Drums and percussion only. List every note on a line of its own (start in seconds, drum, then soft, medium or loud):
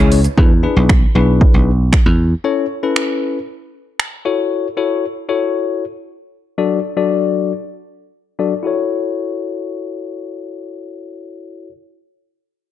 0.12 open hi-hat medium
0.12 shaker medium
0.24 closed hi-hat medium
0.24 shaker medium
0.38 kick loud
0.89 finger snap loud
0.89 kick loud
1.41 kick loud
1.93 finger snap loud
1.93 kick loud
2.96 finger snap loud
4.00 finger snap loud